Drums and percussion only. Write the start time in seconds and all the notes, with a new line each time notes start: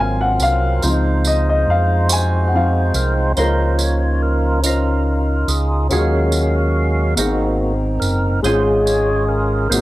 0.40 tambourine
0.82 tambourine
1.25 tambourine
2.09 tambourine
2.94 tambourine
3.37 tambourine
3.79 tambourine
4.64 tambourine
5.48 tambourine
5.91 tambourine
6.32 tambourine
7.17 tambourine
8.02 tambourine
8.44 tambourine
8.87 tambourine
9.72 tambourine